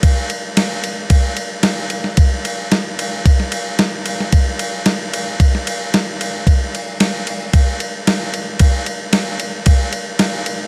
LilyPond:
\new DrumStaff \with { instrumentName = "Drums" } \drummode { \time 4/4 \tempo 4 = 112 <bd cymr>8 cymr8 <cymr sn>8 cymr8 <bd cymr>8 cymr8 <cymr sn>8 cymr16 sn16 | <bd cymr>8 cymr8 <cymr sn>8 cymr8 <bd cymr>16 sn16 cymr8 <cymr sn>8 cymr16 sn16 | <bd cymr>8 cymr8 <cymr sn>8 cymr8 <bd cymr>16 sn16 cymr8 <cymr sn>8 cymr8 | <bd cymr>8 cymr8 <cymr sn>8 cymr8 <bd cymr>8 cymr8 <cymr sn>8 cymr8 |
<bd cymr>8 cymr8 <cymr sn>8 cymr8 <bd cymr>8 cymr8 <cymr sn>8 cymr8 | }